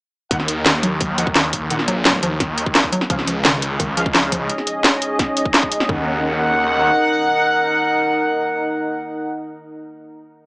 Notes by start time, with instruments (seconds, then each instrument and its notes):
0.31 detuned saw bass D#2, synth arpeggio sound D#3, brass ensemble D#4 A#4 F#5, kick, closed hi-hat
0.40 snare
0.48 closed hi-hat
0.66 detuned saw bass D#2, synth arpeggio sound D#3, snare, closed hi-hat
0.83 synth arpeggio sound F#3, closed hi-hat
1.01 synth arpeggio sound F#3, kick, closed hi-hat
1.18 detuned saw bass D#2, synth arpeggio sound F3, brass ensemble D#4 A#4 F#5, closed hi-hat
1.27 kick
1.36 synth arpeggio sound D#3, snare, closed hi-hat
1.53 kick, closed hi-hat
1.70 detuned saw bass A#1, synth arpeggio sound D#3, brass ensemble D#4 A#4 F#5, closed hi-hat
1.79 snare
1.88 synth arpeggio sound F#3, closed hi-hat
2.05 synth arpeggio sound F#3, snare, closed hi-hat
2.23 detuned saw bass D#2, synth arpeggio sound F3, closed hi-hat
2.40 synth arpeggio sound D#3, kick, snare, closed hi-hat
2.58 closed hi-hat
2.66 kick
2.75 detuned saw bass D#2, synth arpeggio sound D#3, snare, closed hi-hat
2.84 kick
2.93 synth arpeggio sound F#3, closed hi-hat
3.01 snare
3.10 detuned saw bass C#2, synth arpeggio sound F3, ambient pad C#4 G#4 D#5, brass ensemble C#4 G#4 F5, kick, closed hi-hat
3.19 snare
3.27 synth arpeggio sound F3, closed hi-hat
3.45 detuned saw bass C#2, synth arpeggio sound D#3, snare, closed hi-hat
3.62 closed hi-hat
3.80 synth arpeggio sound D#3, kick, closed hi-hat
3.97 detuned saw bass C#2, synth arpeggio sound F3, brass ensemble C#4 G#4 F5, closed hi-hat
4.06 kick
4.15 synth arpeggio sound F3, snare, closed hi-hat
4.32 synth arpeggio sound F3, kick, closed hi-hat
4.50 closed hi-hat
4.58 snare
4.67 closed hi-hat
4.84 snare, closed hi-hat
5.02 closed hi-hat
5.19 kick, snare, closed hi-hat
5.37 closed hi-hat
5.45 kick
5.54 snare, closed hi-hat
5.63 kick, snare
5.72 closed hi-hat
5.80 snare
5.89 detuned saw bass D#2, synth arpeggio sound D#3, ambient pad D#4 A#4, brass ensemble D#4 A#4 F#5, kick, floor tom